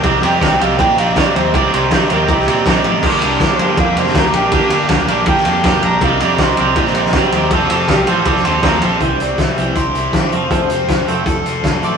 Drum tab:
CC |----------------|----------------|x---------------|----------------|
RD |x-x-x-x-x-x-x-x-|x-x-x-x-x-x-x-x-|--x-x-x-x-x-x-x-|x-x-x-x-x-x-x-x-|
HH |----------------|----------------|----------------|----------------|
SD |----o-------o---|----o----o--o---|----o------oo---|----o----o--o---|
BD |o---o---o---o---|o---o---o---o---|o---o---o---o---|o---o---o---o---|

CC |----------------|----------------|----------------|----------------|
RD |x-x-x-x-x-x-x-x-|x-x-x-x-x-x-x-x-|----------------|----------------|
HH |----------------|----------------|x-x-x-x-x-x-x-x-|x-x-x-x-x-x-x-x-|
SD |----o----o-oo---|----o----o--o---|----o-------o---|----o-------o---|
BD |o---o---o---o---|o---o---o---o---|o---o---o---o---|o---o---o---o---|